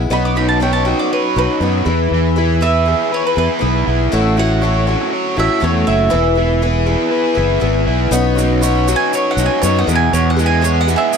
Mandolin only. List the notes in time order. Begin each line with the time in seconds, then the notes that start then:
0.13 B5
0.25 D6
0.37 B5
0.49 A5
0.62 G5
0.73 A5
0.85 G5
0.99 D5
1.13 B4
1.38 B4
2.62 E5
3.14 C#5
3.27 B4
3.38 B4
4.39 F#5
5.40 E5
5.64 C#5
5.87 E5
8.96 G#5
9.15 C#5
9.31 F#5
9.46 G#5
9.62 C#5
9.79 F#5
9.95 G#5
10.13 C#5
10.30 F#5
10.46 G#5
10.64 C#5
10.81 F#5
10.96 G#4 E5